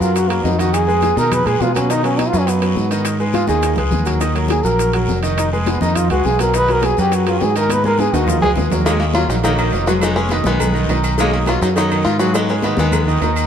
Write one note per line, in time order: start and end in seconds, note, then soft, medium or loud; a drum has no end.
0.00 0.41 F#2 medium
0.00 0.25 F#3 medium
0.00 0.17 F4 medium
0.00 0.25 F#4 medium
0.00 0.25 A#4 medium
0.00 high conga soft
0.00 short guiro medium
0.00 maracas medium
0.14 0.31 F#4 loud
0.14 high bongo medium
0.14 high conga soft
0.14 high timbale medium
0.14 long guiro medium
0.14 maracas medium
0.29 0.54 F#3 medium
0.29 0.45 A#3 medium
0.29 0.54 F#4 medium
0.29 0.54 A#4 medium
0.29 high bongo soft
0.29 high conga soft
0.29 high timbale medium
0.29 maracas soft
0.43 1.11 F2 medium
0.43 0.61 D#4 medium
0.43 high bongo soft
0.43 low bongo medium
0.43 low timbale medium
0.43 short guiro medium
0.43 maracas soft
0.59 0.83 D#3 medium
0.59 0.83 D#4 medium
0.59 0.75 F#4 loud
0.59 0.83 D#5 medium
0.59 high timbale medium
0.59 short guiro medium
0.59 maracas medium
0.74 1.17 G#4 loud
0.74 high bongo medium
0.74 high timbale medium
0.74 long guiro medium
0.74 maracas medium
0.87 1.11 G#3 medium
0.87 1.12 G#4 medium
0.87 1.12 B4 medium
0.87 high bongo soft
0.87 high conga soft
0.87 maracas soft
1.02 high bongo medium
1.02 high conga medium
1.02 high timbale medium
1.02 short guiro medium
1.02 maracas soft
1.16 1.44 B2 medium
1.16 1.40 D#3 medium
1.16 1.40 D#4 medium
1.16 1.35 A#4 loud
1.16 1.41 D#5 medium
1.16 high conga medium
1.16 short guiro medium
1.16 maracas medium
1.31 1.48 B4 loud
1.31 high bongo medium
1.31 high conga soft
1.31 low conga medium
1.31 high timbale loud
1.31 long guiro medium
1.31 maracas medium
1.45 1.59 A#2 medium
1.45 1.69 G#3 medium
1.45 1.70 G#4 medium
1.45 1.63 G#4 loud
1.45 1.70 B4 medium
1.45 high bongo soft
1.45 high conga soft
1.45 low conga medium
1.45 high timbale medium
1.45 maracas soft
1.60 2.28 B2 medium
1.60 1.74 F4 loud
1.60 high bongo soft
1.60 low bongo medium
1.60 high conga soft
1.60 low timbale medium
1.60 short guiro medium
1.60 maracas soft
1.75 1.87 F#3 medium
1.75 1.93 C#4 loud
1.75 1.87 F#4 medium
1.75 1.87 B4 medium
1.75 high conga medium
1.75 high timbale medium
1.75 short guiro medium
1.75 maracas medium
1.90 2.02 D#3 medium
1.90 2.02 D#4 medium
1.90 2.04 D#4 loud
1.90 2.02 D#5 medium
1.90 high bongo medium
1.90 high timbale medium
1.90 long guiro medium
1.90 maracas medium
2.03 2.27 F#3 medium
2.03 2.20 C#4 medium
2.03 2.28 F#4 medium
2.03 2.28 B4 medium
2.03 high bongo soft
2.03 high timbale medium
2.03 maracas soft
2.18 2.30 D#4 medium
2.18 high bongo medium
2.18 high conga medium
2.18 high timbale medium
2.18 short guiro medium
2.18 maracas soft
2.28 2.40 F4 loud
2.33 2.74 F#2 medium
2.33 2.57 F#3 medium
2.33 2.57 F#4 medium
2.33 2.57 B4 medium
2.33 high conga soft
2.33 short guiro medium
2.33 maracas medium
2.39 2.50 C#4 medium
2.47 3.06 B3 medium
2.47 high bongo medium
2.47 high conga soft
2.47 high timbale medium
2.47 long guiro medium
2.47 maracas medium
2.62 2.86 F#3 medium
2.62 2.86 F#4 medium
2.62 2.86 B4 medium
2.62 high bongo soft
2.62 high timbale medium
2.62 maracas soft
2.76 3.44 G#2 medium
2.76 high bongo soft
2.76 low bongo medium
2.76 high conga soft
2.76 short guiro medium
2.76 maracas soft
2.91 3.15 D#3 medium
2.91 3.15 D#4 medium
2.91 3.15 D#5 medium
2.91 high conga soft
2.91 high timbale medium
2.91 short guiro medium
2.91 maracas medium
3.05 high bongo medium
3.05 high conga soft
3.05 high timbale loud
3.05 long guiro medium
3.05 maracas medium
3.19 3.44 G#3 medium
3.19 3.44 G#4 medium
3.19 3.44 B4 medium
3.19 high bongo soft
3.19 high conga soft
3.19 maracas soft
3.34 3.47 F4 loud
3.34 high bongo medium
3.34 high conga medium
3.34 high timbale medium
3.34 short guiro medium
3.34 maracas soft
3.47 3.76 D#2 medium
3.47 3.72 D#3 medium
3.47 3.73 D#4 medium
3.47 3.76 G#4 loud
3.47 3.73 D#5 medium
3.47 high bongo soft
3.47 high conga medium
3.47 short guiro medium
3.47 maracas medium
3.62 high bongo medium
3.62 high timbale loud
3.62 long guiro medium
3.62 maracas medium
3.76 3.91 C#2 medium
3.76 4.02 G#3 medium
3.76 4.02 G#4 medium
3.76 4.02 B4 medium
3.76 high bongo soft
3.76 low conga medium
3.76 high timbale medium
3.76 maracas soft
3.91 4.60 D#2 medium
3.91 high bongo soft
3.91 low bongo medium
3.91 low conga medium
3.91 short guiro medium
3.91 maracas soft
4.05 4.18 F#3 medium
4.05 4.18 F#4 medium
4.05 4.19 A#4 medium
4.05 low conga medium
4.05 high timbale medium
4.05 short guiro medium
4.05 maracas medium
4.20 4.33 D#3 medium
4.20 4.33 D#4 medium
4.20 4.33 D#5 medium
4.20 high bongo medium
4.20 high conga soft
4.20 high timbale medium
4.20 long guiro medium
4.20 maracas medium
4.34 4.59 F#3 medium
4.34 4.59 F#4 medium
4.34 4.60 A#4 medium
4.34 high bongo soft
4.34 high conga soft
4.34 high timbale medium
4.34 maracas soft
4.48 4.65 G#4 medium
4.48 high bongo medium
4.48 high conga medium
4.48 high timbale medium
4.48 short guiro medium
4.48 maracas soft
4.63 5.05 A#1 medium
4.63 4.88 F#3 medium
4.63 4.89 F#4 medium
4.63 4.93 A#4 loud
4.63 4.89 A#4 medium
4.63 high bongo soft
4.63 high conga soft
4.63 short guiro medium
4.63 maracas medium
4.78 high bongo medium
4.78 high conga soft
4.78 high timbale medium
4.78 long guiro medium
4.78 maracas medium
4.93 5.18 F#3 medium
4.93 5.18 F#4 medium
4.93 5.18 A#4 medium
4.93 high bongo soft
4.93 high conga soft
4.93 high timbale loud
4.93 maracas soft
5.08 5.76 F1 medium
5.08 high bongo soft
5.08 low bongo medium
5.08 high conga soft
5.08 short guiro medium
5.08 maracas soft
5.23 5.47 D#3 medium
5.23 5.47 D#4 medium
5.23 5.47 D#5 medium
5.23 high conga soft
5.23 high timbale medium
5.23 short guiro medium
5.23 maracas medium
5.37 5.51 D#4 medium
5.37 high bongo medium
5.37 high conga soft
5.37 high timbale medium
5.37 long guiro medium
5.37 maracas medium
5.51 5.68 G#3 medium
5.51 5.76 G#3 medium
5.51 5.77 G#4 medium
5.51 5.77 B4 medium
5.51 high bongo soft
5.51 high conga soft
5.51 maracas soft
5.66 5.81 B3 medium
5.66 high bongo medium
5.66 high conga medium
5.66 high timbale medium
5.66 short guiro medium
5.66 maracas soft
5.81 6.08 F2 loud
5.81 6.05 D#3 medium
5.81 6.05 D#4 medium
5.81 5.98 D#4 loud
5.81 6.06 D#5 medium
5.81 high conga loud
5.81 short guiro medium
5.81 maracas medium
5.95 6.10 F4 medium
5.95 high bongo medium
5.95 high conga soft
5.95 low conga medium
5.95 high timbale loud
5.95 long guiro medium
5.95 maracas medium
6.10 6.24 C#2 medium
6.10 6.35 G#3 medium
6.10 6.27 F#4 loud
6.10 6.35 G#4 medium
6.10 6.35 B4 medium
6.10 high bongo soft
6.10 high conga soft
6.10 high timbale medium
6.10 maracas soft
6.25 6.92 B1 medium
6.25 6.40 G#4 loud
6.25 high bongo soft
6.25 low bongo medium
6.25 high conga soft
6.25 short guiro medium
6.25 maracas soft
6.39 6.52 F#3 medium
6.39 6.52 F#4 medium
6.39 6.58 A#4 loud
6.39 6.52 B4 medium
6.39 high conga medium
6.39 high timbale loud
6.39 short guiro medium
6.39 maracas medium
6.53 6.66 D#3 medium
6.53 6.67 D#4 medium
6.53 6.73 B4 loud
6.53 6.67 D#5 medium
6.53 high bongo medium
6.53 high conga soft
6.53 high timbale medium
6.53 long guiro medium
6.53 maracas medium
6.68 6.93 F#3 medium
6.68 6.93 F#4 medium
6.68 6.86 A#4 loud
6.68 6.93 B4 medium
6.68 high bongo soft
6.68 high conga soft
6.68 high timbale medium
6.68 maracas soft
6.82 6.98 G#4 loud
6.82 high bongo medium
6.82 high conga medium
6.82 high timbale medium
6.82 short guiro medium
6.82 maracas soft
6.97 7.38 F#2 medium
6.97 7.22 F#3 medium
6.97 7.22 F#4 medium
6.97 7.16 G4 loud
6.97 7.22 B4 medium
6.97 high bongo soft
6.97 high conga soft
6.97 short guiro medium
6.97 maracas medium
7.12 7.31 F#4 medium
7.12 high bongo medium
7.12 high conga soft
7.12 high timbale medium
7.12 long guiro medium
7.12 maracas medium
7.26 7.50 F#3 medium
7.26 7.44 F4 loud
7.26 7.51 F#4 medium
7.26 7.51 B4 medium
7.26 high bongo soft
7.26 high conga soft
7.26 high timbale loud
7.26 maracas soft
7.40 8.08 G#2 medium
7.40 7.56 G#4 loud
7.40 high bongo soft
7.40 low bongo medium
7.40 high conga soft
7.40 low timbale medium
7.40 short guiro medium
7.40 maracas soft
7.55 7.79 D#3 medium
7.55 7.80 D#4 medium
7.55 7.74 A#4 loud
7.55 7.80 D#5 medium
7.55 high conga soft
7.55 high timbale medium
7.55 short guiro medium
7.55 maracas medium
7.69 7.86 B4 loud
7.69 high bongo medium
7.69 high conga medium
7.69 high timbale loud
7.69 long guiro medium
7.69 maracas medium
7.84 8.09 G#3 medium
7.84 8.09 G#4 medium
7.84 8.01 A#4 loud
7.84 8.09 B4 medium
7.84 high bongo soft
7.84 high conga medium
7.84 maracas soft
7.99 8.16 G#4 loud
7.99 high bongo medium
7.99 high conga medium
7.99 high timbale medium
7.99 short guiro medium
7.99 maracas soft
8.13 8.40 D#2 medium
8.13 8.37 D#3 medium
8.13 8.38 D#4 medium
8.13 8.30 F#4 loud
8.13 8.38 D#5 medium
8.13 high bongo soft
8.13 high timbale loud
8.13 short guiro medium
8.13 maracas medium
8.27 8.41 F4 medium
8.27 high bongo medium
8.27 low conga loud
8.27 low timbale medium
8.27 long guiro medium
8.27 maracas medium
8.41 8.56 C#2 medium
8.41 8.66 G#3 medium
8.41 8.51 G#4 loud
8.41 8.66 G#4 medium
8.41 8.67 B4 medium
8.41 high bongo soft
8.41 low conga loud
8.41 low timbale loud
8.41 maracas soft
8.56 9.24 D#2 loud
8.56 high bongo soft
8.56 low bongo medium
8.56 low conga medium
8.56 low timbale loud
8.56 short guiro medium
8.56 maracas soft
8.70 8.83 F#3 medium
8.70 8.84 F#4 medium
8.70 8.84 A#4 medium
8.70 low conga loud
8.70 low timbale medium
8.70 short guiro medium
8.70 maracas medium
8.85 9.09 D#3 medium
8.85 9.40 D#3 medium
8.85 9.40 F#3 medium
8.85 9.01 G#3 medium
8.85 8.91 A#3 loud
8.85 9.09 D#4 medium
8.85 9.10 D#5 medium
8.85 cowbell loud
8.85 high conga soft
8.85 low agogo medium
8.85 long guiro medium
8.85 maracas medium
8.99 9.05 A#3 medium
8.99 high conga soft
8.99 maracas soft
9.14 9.38 F#3 medium
9.14 9.23 F#3 medium
9.14 9.29 F4 loud
9.14 9.38 F#4 medium
9.14 9.39 A#4 medium
9.14 cowbell medium
9.14 high conga loud
9.14 low agogo loud
9.14 short guiro medium
9.14 maracas soft
9.28 9.69 A#1 loud
9.28 9.37 F#3 medium
9.28 9.35 D#4 loud
9.28 high conga soft
9.28 short guiro medium
9.28 maracas medium
9.43 9.55 D#3 medium
9.43 9.52 D#3 medium
9.43 9.99 F#3 medium
9.43 9.99 A#3 medium
9.43 9.56 D#4 medium
9.43 9.89 D#4 loud
9.43 9.56 D#5 medium
9.43 cowbell loud
9.43 high conga soft
9.43 low agogo medium
9.43 long guiro medium
9.43 maracas medium
9.57 9.73 D#3 medium
9.57 9.83 D#3 loud
9.57 9.82 D#4 medium
9.57 9.83 D#5 medium
9.57 high conga soft
9.57 low agogo loud
9.57 maracas soft
9.72 10.40 F1 medium
9.72 cowbell medium
9.72 high conga soft
9.72 low timbale medium
9.72 short guiro medium
9.72 maracas soft
9.86 10.20 F#3 medium
9.86 10.11 G#3 medium
9.86 9.92 F#4 loud
9.86 10.12 G#4 medium
9.86 10.12 B4 medium
9.86 cowbell medium
9.86 high conga soft
9.86 low agogo medium
9.86 short guiro medium
9.86 maracas medium
10.01 10.46 G#3 medium
10.01 10.16 B3 medium
10.01 10.16 D#4 loud
10.01 cowbell loud
10.01 high conga soft
10.01 low agogo loud
10.01 long guiro medium
10.01 maracas medium
10.15 10.29 G#3 medium
10.15 10.30 C#4 loud
10.15 10.29 G#4 medium
10.15 10.29 B4 medium
10.15 high conga soft
10.15 maracas soft
10.29 10.43 D#3 medium
10.29 10.37 B3 loud
10.29 10.43 D#4 medium
10.29 10.44 D#5 medium
10.29 cowbell medium
10.29 high conga loud
10.29 low agogo medium
10.29 short guiro medium
10.29 maracas soft
10.44 10.86 B1 medium
10.44 10.88 D#3 medium
10.44 11.00 D#3 medium
10.44 10.70 G#3 medium
10.44 11.00 G#3 medium
10.44 11.00 B3 loud
10.44 10.70 G#4 medium
10.44 10.70 B4 medium
10.44 high conga loud
10.44 short guiro medium
10.44 maracas medium
10.59 cowbell loud
10.59 high conga soft
10.59 low conga medium
10.59 low agogo loud
10.59 long guiro medium
10.59 maracas medium
10.74 10.86 D#3 medium
10.74 10.87 D#4 medium
10.74 10.87 D#5 medium
10.74 high conga soft
10.74 maracas soft
10.88 11.56 B1 medium
10.88 11.13 D#3 medium
10.88 11.13 D#4 medium
10.88 11.13 D#5 medium
10.88 cowbell medium
10.88 low timbale medium
10.88 low agogo medium
10.88 short guiro medium
10.88 maracas soft
11.04 low agogo loud
11.04 short guiro medium
11.04 maracas medium
11.18 11.42 D#3 medium
11.18 11.73 D#3 medium
11.18 11.73 F#3 medium
11.18 11.34 G#3 loud
11.18 11.32 A#3 loud
11.18 11.42 D#4 medium
11.18 11.42 D#5 medium
11.18 cowbell loud
11.18 high conga soft
11.18 low agogo medium
11.18 long guiro medium
11.18 maracas medium
11.32 11.38 A#3 medium
11.32 high conga soft
11.32 maracas soft
11.46 11.71 F#3 medium
11.46 11.54 F#3 medium
11.46 11.62 F4 loud
11.46 11.71 F#4 medium
11.46 11.71 B4 medium
11.46 cowbell medium
11.46 high conga medium
11.46 low agogo loud
11.46 short guiro medium
11.46 maracas soft
11.61 12.02 F#2 medium
11.61 11.69 F#3 medium
11.61 11.67 D#4 loud
11.61 high conga soft
11.61 short guiro medium
11.61 maracas medium
11.76 11.83 D#3 medium
11.76 11.88 D#3 medium
11.76 12.31 F#3 medium
11.76 12.31 B3 medium
11.76 11.88 D#4 medium
11.76 12.04 D#4 loud
11.76 11.88 D#5 medium
11.76 cowbell loud
11.76 low agogo medium
11.76 long guiro medium
11.76 maracas medium
11.90 12.05 D#3 medium
11.90 12.15 D#3 medium
11.90 12.15 D#4 medium
11.90 12.15 D#5 medium
11.90 high conga soft
11.90 low agogo loud
11.90 maracas soft
12.05 12.72 G#2 medium
12.05 12.19 F4 loud
12.05 cowbell medium
12.05 short guiro medium
12.05 maracas soft
12.18 12.52 F#3 medium
12.18 12.44 G#3 medium
12.18 12.33 F#4 loud
12.18 12.44 G#4 medium
12.18 12.44 B4 medium
12.18 cowbell medium
12.18 high conga soft
12.18 low agogo medium
12.18 short guiro medium
12.18 maracas medium
12.34 12.79 G#3 medium
12.34 12.50 B3 medium
12.34 12.50 D#4 loud
12.34 cowbell loud
12.34 high conga soft
12.34 low agogo loud
12.34 long guiro medium
12.34 maracas medium
12.49 12.61 G#3 medium
12.49 12.55 C#4 loud
12.49 12.61 G#4 medium
12.49 12.62 B4 medium
12.49 maracas soft
12.62 12.76 D#3 medium
12.62 12.77 B3 medium
12.62 12.76 D#4 medium
12.62 12.76 D#5 medium
12.62 cowbell medium
12.62 high conga medium
12.62 low agogo medium
12.62 short guiro medium
12.62 maracas soft
12.77 13.18 D#2 medium
12.77 13.21 D#3 medium
12.77 13.33 D#3 medium
12.77 13.02 G#3 medium
12.77 13.33 G#3 medium
12.77 13.33 B3 loud
12.77 13.02 G#4 medium
12.77 13.02 B4 medium
12.77 high conga loud
12.77 short guiro medium
12.77 maracas medium
12.92 cowbell loud
12.92 high conga soft
12.92 low conga medium
12.92 low agogo loud
12.92 long guiro medium
12.92 maracas medium
13.06 13.19 D#3 medium
13.06 13.19 D#4 medium
13.06 13.19 D#5 medium
13.06 high conga soft
13.06 maracas soft
13.21 13.47 D#2 medium
13.21 13.45 D#3 medium
13.21 13.45 D#4 medium
13.21 13.45 D#5 medium
13.21 cowbell medium
13.21 low timbale medium
13.21 low agogo medium
13.21 short guiro medium
13.21 maracas soft
13.36 low agogo loud
13.36 short guiro medium
13.36 maracas medium